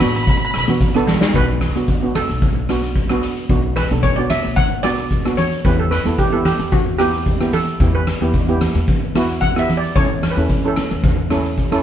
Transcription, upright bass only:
0.01 A1
0.55 B1
1.34 B1
1.75 B1
2.30 B1
3.49 B1
3.91 B1
4.45 B1
5.65 E2
6.05 E2
6.59 E2
7.80 E2
8.21 E2
8.74 E2
9.96 E2
10.36 E2
10.91 E2

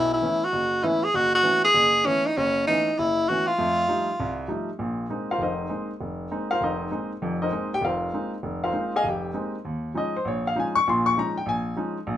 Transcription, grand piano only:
Already playing: B1 B2
0.22 E3 A3 B3 C#4
0.53 F#1
0.83 E3 A3 B3 C#4
1.14 F#1
1.43 E3 A3 B3 C#4
1.74 F#1
2.06 E3 A3 B3 C#4
2.38 F#1
2.68 E3 A3 B3 C#4
2.99 F#1
3.30 E3 A3 B3 C#4
3.58 F2 A3
3.88 F3 G3 A3 D#4
4.20 C2
4.48 F3 G3 A3 D#4
4.79 A#1 A#2
5.10 G#3 A#3 C4 D#4
5.31 F4 A#4 C5 F5
5.38 F1
5.42 D#4 A#4 C5 D#5
5.69 G#3 A#3 C4 D#4
6.01 F1
6.31 G#3 A#3 C4 D#4
6.51 F4 A#4 C5 F5
6.61 F1 D#4 A#4 C5 D#5
6.91 G#3 A#3 C4 D#4
7.22 F1 F2
7.42 D#4 A#4 C5 D#5
7.52 G#3 A#3 C4 D#4
7.74 G4 G5
7.81 F1 F4 A#4 C5 F5
8.13 G#3 A#3 C4 D#4
8.43 F1
8.64 F4 A#4 C5 F5
8.72 G#3 A#3 C4 D#4
8.96 G#4 D#5 F5 G#5
9.04 F1
9.09 G4 G5
9.34 G#3 A#3 C4 D#4
9.65 D#2
9.94 F3 G#3 C#4 D#4 D#5
10.16 C5
10.25 A#1 C#5
10.47 F5
10.56 F3 G#3 C#4 D#4
10.60 G#5
10.75 C#6
10.88 A#1 A#2 C6
11.06 C#6
11.17 F3 G#3 C#4 D#4 A#5
11.38 G5
11.46 A#1 G#5
11.76 F3 G#3 C#4 D#4
12.07 A#1

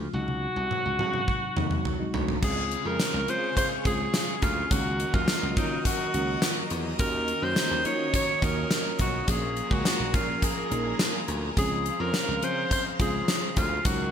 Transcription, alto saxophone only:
0.14 F#4
2.44 G#4
2.87 A#4
3.30 C5
3.57 C5
3.86 G#4
4.43 F4
4.72 F#4
5.15 F4
5.57 D#4
5.86 F#4
7.00 A#4
7.43 C5
7.86 C#5
8.15 C#5
8.44 A#4
9.01 F#4
9.30 G#4
9.73 F#4
10.15 F4
10.44 G#4
11.58 G#4
12.01 A#4
12.44 C5
12.72 C5
13.01 G#4
13.58 F4
13.86 F#4

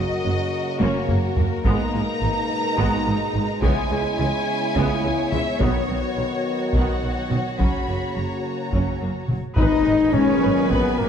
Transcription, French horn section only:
Already playing: A#3 F#4
1.66 D#4
3.64 B3 E4
5.60 F#4
7.58 A#3
9.58 D#4
10.13 C#4
10.69 B3
10.98 A#3

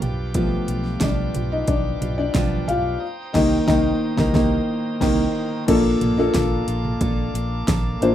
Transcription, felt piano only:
0.35 F3 A3 B3
1.03 D4 D5
1.52 D#4 D#5
1.68 D4 D5
2.18 D4 D5
2.68 F4 F5
3.33 D#3 A#3 D#4 D#5
3.67 D#3 A#3 D#4 D#5
4.17 D#3 A#3
4.33 D#3 A#3
5.01 D#3 A#3
5.67 A#2 A#3 D4 F4 A4
6.18 A#3 D4 F4 A4
8.01 A#3 D4 F4 C5

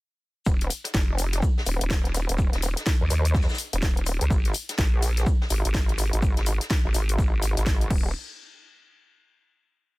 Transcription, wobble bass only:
0.46 D#1
0.94 F1
1.66 D#1
1.81 D#1
2.29 D#1
2.53 D#1
3.01 D#2
3.10 D#2
3.73 D#1
4.21 C#2
4.30 G#1
4.78 A#1
5.50 G#1
5.65 G#1
6.13 G#1
6.37 G#1
6.85 G#1
6.94 G#1
7.18 G#1
7.57 G#1
7.90 D#1

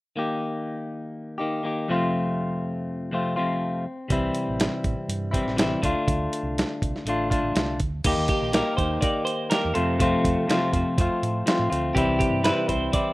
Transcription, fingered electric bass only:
4.10 C2
4.48 A1
4.85 A1
5.08 G2
5.46 A1
5.84 D2
6.08 D2
6.43 C2
6.82 C2
7.05 A1
7.43 A1
7.55 C2
7.80 D2
8.05 D#2
8.17 D#2
8.42 A#1
8.78 D#2
9.65 E2
9.76 F2
10.25 F2
10.49 F3
10.74 F2
10.98 F2
11.22 A2
11.59 A2
11.72 D2
11.96 C2
12.07 C2
12.31 G2
12.69 C2

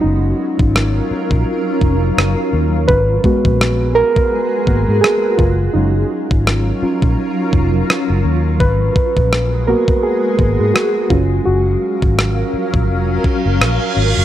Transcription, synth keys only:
Already playing: F#3 C#4 F4
0.01 D#4
2.88 B4
3.24 G#3 B3 F#4
3.95 A#4
4.68 A#3 B3 F#4
5.01 G#4
5.37 F4
5.73 F#3 C#4 D#4 F4
6.82 F#3 C#4 F4
8.60 B4
9.67 A#3 B3 F#4 A#4
10.03 G#4
10.74 F#4
11.10 F#3 C#4 F4
11.45 F#4

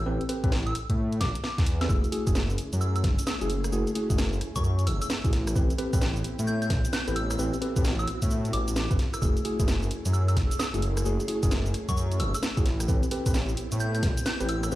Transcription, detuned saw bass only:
0.06 A1
0.44 A1
0.90 A2
1.21 A1
1.58 E2
1.89 F#1
2.27 F#1
2.73 F#2
3.04 F#1
3.41 F#1
3.72 F#1
4.10 F#1
4.56 F#2
4.87 F#1
5.25 A1
5.56 A1
5.93 A1
6.39 A2
6.70 A1
7.08 A1
7.39 A1
7.76 A1
8.22 A2
8.53 A1
8.91 G1
9.22 F#1
9.60 F#1
10.05 F#2
10.37 F#1
10.74 F#1
11.05 F#1
11.43 F#1
11.89 F#2
12.20 F#1
12.57 A1
12.88 A1
13.26 A1
13.72 A2
14.03 A1
14.41 A1
14.72 A1

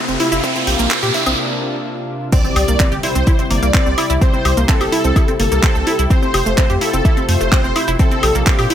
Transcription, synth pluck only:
0.08 C4
0.20 E4
0.32 E4
0.44 C4
0.56 C4
0.67 G4
0.79 A#3
0.91 C4
1.03 G4
1.14 E4
1.26 C4
2.32 C4
2.44 C4
2.56 G4
2.68 A#3
2.80 C4
2.92 G4
3.03 E4
3.15 C4
3.27 E4
3.39 C4
3.51 A#3
3.63 A#3
3.74 C4
3.86 C4
3.98 E4
4.10 E4
4.21 C4
4.34 C4
4.45 G4
4.57 A#3
4.69 C4
4.81 G4
4.92 E4
5.05 C4
5.16 E4
5.28 C4
5.40 A#3
5.52 A#3
5.63 C4
5.75 C4
5.87 E4
5.99 E4
6.11 C4
6.23 C4
6.34 G4
6.46 A3
6.58 C4
6.70 G4
6.81 E4
6.94 C4
7.05 E4
7.17 C4
7.29 A3
7.41 A3
7.52 C4
7.64 C4
7.76 E4
7.88 E4
7.99 C4
8.12 C4
8.23 G4
8.35 A#3
8.47 C4
8.59 G4
8.70 E4

